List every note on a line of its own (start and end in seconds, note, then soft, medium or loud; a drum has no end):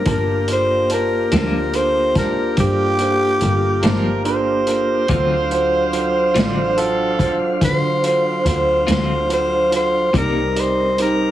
0.05 1.28 G1 medium
0.05 5.07 A#3 medium
0.05 0.37 D4 medium
0.05 5.07 D4 medium
0.05 0.38 F4 soft
0.05 5.06 F4 medium
0.05 5.07 G4 medium
0.05 0.38 A#4 medium
0.05 0.38 A5 medium
0.05 kick medium
0.05 closed hi-hat medium
0.10 0.49 A#4 medium
0.48 0.80 D4 soft
0.48 0.80 F4 soft
0.48 0.80 A4 soft
0.48 0.80 A#4 medium
0.48 closed hi-hat medium
0.52 0.91 C5 medium
0.90 1.22 D4 soft
0.90 1.22 F4 soft
0.90 1.33 A#4 medium
0.90 1.22 C5 soft
0.90 1.22 A5 soft
0.90 closed hi-hat medium
1.31 2.54 D2 medium
1.31 1.59 G2 soft
1.31 1.58 F3 medium
1.31 1.58 A#3 medium
1.31 1.63 D4 soft
1.31 1.58 D4 medium
1.31 1.64 F4 soft
1.31 1.77 A#4 medium
1.31 1.64 C5 medium
1.31 1.64 A5 soft
1.31 snare loud
1.31 closed hi-hat medium
1.73 2.05 D4 soft
1.73 2.05 F4 soft
1.73 2.06 A4 soft
1.73 2.05 A#4 soft
1.73 2.16 C5 medium
1.73 closed hi-hat medium
2.15 2.47 D4 soft
2.15 2.47 F4 soft
2.15 2.58 A#4 medium
2.15 2.47 C5 medium
2.15 2.47 A5 soft
2.15 kick medium
2.15 snare soft
2.15 closed hi-hat medium
2.57 3.38 G2 medium
2.57 2.89 D4 soft
2.57 2.89 F4 soft
2.57 4.23 G4 loud
2.57 2.90 A4 soft
2.57 2.90 C5 medium
2.57 kick medium
2.57 closed hi-hat medium
2.99 3.31 D4 soft
2.99 3.31 F4 soft
2.99 3.31 A4 soft
2.99 3.32 C5 soft
2.99 closed hi-hat medium
3.41 3.80 G1 medium
3.41 3.73 D4 soft
3.41 3.74 F4 soft
3.41 3.74 A4 soft
3.41 3.74 A#4 medium
3.41 closed hi-hat soft
3.83 5.06 G1 medium
3.83 4.10 G2 medium
3.83 4.10 F3 medium
3.83 4.10 A#3 medium
3.83 4.15 D4 medium
3.83 4.09 D4 medium
3.83 3.91 F4 soft
3.83 4.15 F4 soft
3.83 3.90 G4 soft
3.83 4.24 A#4 medium
3.83 4.16 C5 medium
3.83 4.15 A5 soft
3.83 snare loud
3.83 closed hi-hat medium
4.25 4.57 D4 medium
4.25 4.57 F4 medium
4.25 4.57 A4 medium
4.25 4.57 A#4 medium
4.25 6.80 C5 medium
4.25 closed hi-hat soft
4.67 4.99 D4 medium
4.67 4.99 F4 soft
4.67 4.99 A4 soft
4.67 4.99 A#4 medium
4.67 closed hi-hat soft
5.08 6.32 D2 medium
5.08 5.35 D3 medium
5.08 5.35 F#3 medium
5.08 10.10 F#3 medium
5.08 5.35 C4 medium
5.08 10.10 D4 medium
5.08 5.41 F4 medium
5.08 5.36 F4 medium
5.08 5.41 F#4 medium
5.08 5.41 A4 medium
5.08 5.41 C5 medium
5.08 10.10 C5 medium
5.08 10.10 F5 medium
5.08 kick medium
5.08 closed hi-hat medium
5.51 5.83 F4 medium
5.51 5.83 F#4 soft
5.51 5.83 A4 soft
5.51 5.83 C5 medium
5.51 closed hi-hat soft
5.93 6.25 F4 medium
5.93 6.25 F#4 soft
5.93 6.25 A4 soft
5.93 6.25 C5 medium
5.93 closed hi-hat medium
6.34 7.57 A1 medium
6.34 6.61 D3 medium
6.34 6.61 F#3 medium
6.34 6.61 C4 medium
6.34 6.60 F4 medium
6.34 6.67 F4 medium
6.34 6.67 F#4 soft
6.34 6.67 A4 soft
6.34 6.68 D5 medium
6.34 snare medium
6.34 closed hi-hat medium
6.78 7.09 F4 medium
6.78 7.09 F#4 soft
6.78 7.09 A4 soft
6.78 7.39 A4 medium
6.78 7.10 C5 medium
6.78 closed hi-hat medium
7.19 7.51 F4 medium
7.19 7.51 F#4 medium
7.19 7.51 A4 medium
7.19 7.51 C5 medium
7.19 kick medium
7.19 closed hi-hat soft
7.61 8.42 D3 medium
7.61 7.93 F4 soft
7.61 7.93 F#4 soft
7.61 7.93 A4 soft
7.61 7.93 C5 medium
7.61 8.04 C5 medium
7.61 kick medium
7.61 closed hi-hat medium
8.03 8.35 F4 soft
8.03 8.35 F#4 soft
8.03 8.35 A4 soft
8.03 8.35 C5 soft
8.03 8.46 C5 medium
8.03 closed hi-hat medium
8.44 8.84 D2 medium
8.44 8.77 F4 soft
8.44 8.77 F#4 soft
8.44 8.77 A4 soft
8.44 8.77 C5 medium
8.44 closed hi-hat medium
8.49 8.88 C5 medium
8.87 10.10 D2 medium
8.87 9.14 D3 soft
8.87 9.13 F#3 soft
8.87 9.13 C4 medium
8.87 9.13 F4 soft
8.87 9.19 F4 soft
8.87 9.19 F#4 soft
8.87 9.20 A4 soft
8.87 9.20 C5 soft
8.87 snare medium
8.87 closed hi-hat medium
8.91 9.30 C5 medium
9.29 9.61 F4 soft
9.29 9.61 F#4 soft
9.29 9.61 A4 soft
9.29 9.61 C5 medium
9.29 closed hi-hat medium
9.33 9.73 C5 medium
9.71 10.03 F4 soft
9.71 10.03 F#4 soft
9.71 10.04 A4 soft
9.71 10.04 C5 medium
9.71 closed hi-hat medium
9.76 10.15 C5 medium
10.13 11.31 C2 medium
10.13 10.39 C3 medium
10.13 10.40 G3 medium
10.13 11.31 G3 medium
10.13 10.40 A#3 medium
10.13 11.31 C4 medium
10.13 10.46 D#4 medium
10.13 11.31 D#4 medium
10.13 10.40 D#4 medium
10.13 10.46 G4 soft
10.13 10.46 A#4 soft
10.13 11.31 A#4 medium
10.13 10.46 D5 medium
10.13 kick medium
10.13 closed hi-hat medium
10.17 10.62 A#4 medium
10.56 10.88 D#4 soft
10.56 10.88 G4 soft
10.56 10.88 A#4 soft
10.56 10.88 D5 medium
10.56 closed hi-hat medium
10.60 10.99 C5 medium
10.98 11.30 D#4 soft
10.98 11.30 G4 soft
10.98 11.31 A#4 soft
10.98 11.31 A#4 medium
10.98 11.31 C5 medium
10.98 closed hi-hat medium